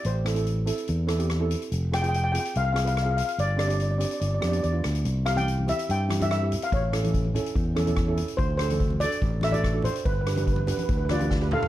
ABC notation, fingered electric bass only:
X:1
M:4/4
L:1/8
Q:1/4=144
K:Am
V:1 name="Fingered electric bass" clef=bass
A,,,4 E,,4 | F,,,4 C,,4 | G,,,4 G,,, F,, E,, D,, | C,,4 G,,4 |
A,,,4 E,,4 | D,,4 A,,,4 | G,,,4 D,,4 |]